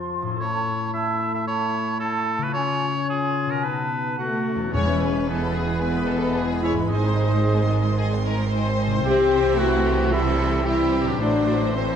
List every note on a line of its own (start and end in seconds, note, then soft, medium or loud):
0.00 0.34 F2 soft
0.00 0.37 F3 medium
0.00 0.36 C4 soft
0.00 0.38 F4 soft
0.00 0.39 F4 medium
0.00 0.35 A4 soft
0.00 0.41 C6 medium
0.22 2.48 A2 medium
0.26 2.41 C#4 medium
0.31 2.53 E4 soft
0.36 2.55 A4 soft
0.40 2.52 A3 medium
0.40 0.90 E4 medium
0.40 0.90 C#5 medium
0.40 0.91 A5 medium
0.93 1.46 E4 medium
0.93 1.33 E5 medium
0.93 1.47 A5 medium
1.34 1.47 E5 medium
1.47 2.00 E4 medium
1.47 1.99 C#5 loud
1.47 2.01 A5 medium
2.00 2.56 E4 medium
2.00 2.44 A4 medium
2.00 2.55 A5 medium
2.38 3.58 C#3 medium
2.42 3.60 C#4 medium
2.42 2.53 B4 medium
2.47 3.62 F4 medium
2.51 2.93 F4 medium
2.51 3.64 G#4 medium
2.51 3.08 C#5 loud
2.56 3.65 C#4 medium
2.56 2.86 G#5 medium
3.09 3.66 F4 medium
3.09 3.52 G#4 medium
3.09 3.64 G#5 medium
3.46 4.67 B2 medium
3.51 4.69 D#4 soft
3.51 3.65 A#4 medium
3.55 4.71 F#4 soft
3.60 4.74 A4 soft
3.60 4.18 B4 medium
3.65 4.14 B3 medium
3.65 4.19 D#4 medium
3.65 4.47 A5 medium
4.18 4.70 A3 medium
4.18 4.45 B3 medium
4.18 4.70 F#4 medium
4.18 4.70 F#5 medium
4.47 4.71 C#4 medium
4.55 6.82 E2 medium
4.60 6.85 B3 soft
4.64 6.87 E4 soft
4.69 5.26 C#4 loud
4.69 6.84 G#4 soft
4.73 6.85 E1 medium
4.73 6.86 E2 medium
4.73 5.51 E2 medium
4.73 5.27 E3 medium
4.73 6.86 E3 medium
4.73 6.86 G#3 medium
4.73 5.27 C#4 medium
4.73 4.86 G#4 medium
4.73 5.27 C#5 medium
4.73 4.99 C#5 medium
4.73 4.87 G#5 medium
4.86 5.01 B4 medium
4.86 5.00 B5 medium
5.00 5.14 G#4 medium
5.00 5.28 B4 medium
5.00 5.14 G#5 medium
5.13 5.27 B4 soft
5.13 5.27 B5 soft
5.27 5.80 E3 medium
5.27 5.66 B3 medium
5.27 5.81 B3 medium
5.27 5.40 G#4 medium
5.27 5.55 A4 medium
5.27 5.81 B4 medium
5.27 5.40 G#5 soft
5.42 5.55 B4 medium
5.42 5.56 B5 medium
5.54 5.81 G#4 medium
5.54 5.68 G#4 soft
5.54 5.68 G#5 soft
5.68 5.81 B4 soft
5.68 5.82 B5 medium
5.80 6.61 E3 medium
5.80 6.65 B3 medium
5.80 6.61 B3 medium
5.80 5.93 G#4 medium
5.80 6.08 B4 medium
5.80 6.45 B4 medium
5.80 5.93 G#5 medium
5.94 6.08 B4 medium
5.94 6.08 B5 medium
6.07 6.22 G#4 soft
6.07 6.35 A4 medium
6.07 6.22 G#5 soft
6.21 6.35 B4 medium
6.21 6.35 B5 medium
6.35 6.48 G#4 medium
6.35 6.63 G#4 medium
6.35 6.48 G#5 medium
6.49 6.63 B4 medium
6.49 6.63 B5 medium
6.62 6.89 G#3 medium
6.62 6.75 E4 medium
6.62 6.89 E4 medium
6.62 6.77 G#4 medium
6.62 6.72 C#5 medium
6.62 6.75 E5 medium
6.62 6.77 G#5 medium
6.72 8.98 G#2 medium
6.76 8.90 C4 medium
6.76 6.91 B4 medium
6.76 6.91 B5 medium
6.81 9.02 D#4 medium
6.85 9.05 G#4 soft
6.89 9.01 G#1 medium
6.89 9.01 G#2 medium
6.89 9.01 D#3 medium
6.89 8.22 G#3 medium
6.89 11.17 C4 medium
6.89 8.21 D#4 medium
6.89 8.22 D#4 medium
6.89 7.95 C5 medium
6.89 8.21 D#5 medium
6.89 7.03 D#5 medium
6.89 7.03 G#5 medium
7.05 7.18 C5 medium
7.05 7.18 C6 medium
7.18 7.31 D#5 medium
7.18 7.31 G#5 medium
7.30 7.44 C5 medium
7.30 7.43 C6 medium
7.45 7.57 D#5 medium
7.45 7.57 G#5 medium
7.59 7.71 C5 medium
7.59 7.71 C6 medium
7.71 7.85 D#5 medium
7.71 7.84 G#5 medium
7.85 7.98 C5 medium
7.85 7.98 C6 medium
7.98 8.06 G#4 medium
7.98 8.11 D#5 medium
7.98 8.11 G#5 medium
8.12 8.25 C5 medium
8.12 8.25 C6 medium
8.25 8.51 A#4 medium
8.25 8.38 D#5 medium
8.25 8.38 G#5 medium
8.38 8.51 C5 medium
8.38 8.52 C6 medium
8.51 9.56 C5 medium
8.51 8.65 D#5 medium
8.51 8.65 G#5 medium
8.68 8.80 C5 medium
8.68 8.80 C6 medium
8.81 8.93 D#5 medium
8.81 8.93 G#5 medium
8.87 11.14 C3 medium
8.91 11.06 C4 medium
8.91 9.05 C5 medium
8.91 9.05 C6 medium
8.96 11.10 E4 medium
9.00 11.20 G3 medium
9.00 9.54 G4 medium
9.00 9.59 G5 loud
9.05 11.16 C2 medium
9.05 11.17 C3 medium
9.05 11.96 E3 medium
9.05 9.55 C4 loud
9.05 9.55 G4 loud
9.05 10.10 C5 medium
9.05 10.09 E5 medium
9.57 10.12 A3 medium
9.57 9.85 E4 medium
9.57 10.12 F#4 loud
9.57 10.11 F#4 medium
9.57 10.12 F#5 loud
9.86 10.13 G4 medium
10.12 10.66 G3 medium
10.12 10.64 E4 loud
10.12 10.65 E4 medium
10.12 10.67 A4 medium
10.12 10.66 C5 medium
10.12 10.65 E5 medium
10.12 10.66 E5 medium
10.66 11.06 G3 medium
10.66 11.06 E4 medium
10.66 11.09 E4 medium
10.66 11.19 G4 medium
10.66 11.09 E5 medium
10.66 11.20 E5 medium
10.70 11.20 C5 medium
11.03 11.96 A2 medium
11.07 11.19 F#3 medium
11.07 11.96 C4 soft
11.07 11.21 D4 medium
11.07 11.19 D4 medium
11.07 11.20 D5 medium
11.12 11.96 E4 soft
11.16 11.96 A4 soft
11.20 11.96 A1 medium
11.20 11.96 A2 medium
11.20 11.73 F#3 medium
11.20 11.96 A3 medium
11.20 11.73 D4 loud
11.20 11.74 D4 medium
11.20 11.96 C5 medium
11.20 11.74 C5 medium
11.20 11.74 D5 medium
11.20 11.74 E5 medium
11.75 11.96 E3 medium
11.75 11.96 C4 medium
11.75 11.96 C5 medium
11.75 11.96 E5 medium